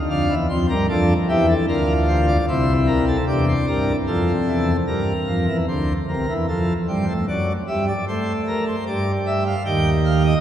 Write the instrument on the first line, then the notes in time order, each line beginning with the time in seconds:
pipe organ
0.10 F2 F3 D4 F5
0.29 E2 E3
0.49 F2 F3 C4 C5
0.69 G2 G3 A#4
0.89 F2 F3 D4 A4
1.29 E2 E3 E4 G4
1.48 A4
1.68 D2 D3 F4 A#4
2.08 C5
2.28 D5
2.48 C2 C3 E4 C5
2.87 A#4
3.08 A4
3.27 E2 E3 D4 G4
3.48 C5
3.67 G2 G3 A#4
4.07 F2 F3 C4 A4
4.47 E2 E3
4.87 G2 G3 A#4
5.28 F2 F3
5.48 E2 E3
5.68 D2 D3 C5
6.08 C2 C3 A#4
6.29 E2 E3
6.48 F2 F3 A4
6.88 G2 G3 C5
7.08 A3
7.28 F#2 F#3 D5
7.68 G2 G3 E5
7.88 D5
8.08 A3 C5
8.47 A#4
8.67 C5
8.87 G2 G3 D5
9.26 E5
9.46 F5
9.65 D#2 D#3 G4 G5
10.05 F5
10.25 D#5